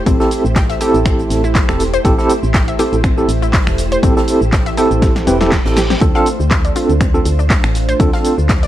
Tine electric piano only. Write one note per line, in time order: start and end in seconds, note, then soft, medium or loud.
0.06 0.17 C4 medium
0.06 0.17 E4 medium
0.06 0.17 G4 medium
0.06 0.17 A4 medium
0.20 0.42 C4 medium
0.20 0.42 E4 medium
0.20 0.42 G4 medium
0.20 0.42 A4 medium
0.81 1.41 C4 loud
0.81 1.41 E4 medium
0.81 1.41 G4 medium
0.81 1.41 A4 loud
1.69 1.82 C4 loud
1.69 1.82 E4 medium
1.69 1.82 G4 medium
1.69 1.82 A4 loud
2.05 2.16 C4 loud
2.05 2.16 E4 medium
2.05 2.16 G4 medium
2.05 2.16 A4 loud
2.18 2.31 C4 medium
2.18 2.31 E4 medium
2.18 2.31 G4 medium
2.18 2.31 A4 loud
2.79 2.94 C4 medium
2.79 2.94 E4 medium
2.79 2.94 G4 medium
2.79 2.94 A4 medium
3.18 3.31 C4 medium
3.18 3.31 E4 medium
3.18 3.31 G4 medium
3.18 3.31 A4 medium
4.03 4.13 C4 medium
4.03 4.13 E4 medium
4.03 4.13 G4 medium
4.03 4.13 A4 loud
4.17 4.39 C4 medium
4.17 4.39 E4 medium
4.17 4.39 G4 medium
4.17 4.39 A4 medium
4.77 5.25 C4 medium
4.77 5.25 E4 medium
4.77 5.25 G4 medium
4.77 5.25 A4 loud
5.27 5.37 C4 medium
5.27 5.37 E4 medium
5.27 5.37 G4 medium
5.27 5.37 B4 medium
5.41 5.54 C4 loud
5.41 5.54 E4 medium
5.41 5.54 G4 medium
5.41 5.54 A4 loud
5.65 5.78 C4 medium
5.65 5.79 E4 medium
5.65 5.79 G4 medium
5.65 5.79 A4 loud
6.01 6.13 C4 loud
6.01 6.13 D4 medium
6.01 6.13 F4 medium
6.01 6.13 A4 loud
6.15 6.28 C4 medium
6.15 6.28 D4 medium
6.15 6.28 F4 medium
6.15 6.28 A4 loud
6.76 6.91 C4 medium
6.76 6.91 D4 medium
6.76 6.91 F4 medium
6.76 6.91 A4 medium
7.14 7.27 C4 medium
7.14 7.27 D4 medium
7.14 7.27 F4 medium
7.14 7.27 A4 medium
8.00 8.10 C4 medium
8.00 8.10 D4 medium
8.00 8.10 F4 medium
8.00 8.10 A4 loud
8.13 8.36 C4 medium
8.13 8.36 D4 medium
8.13 8.36 F4 medium
8.13 8.36 A4 medium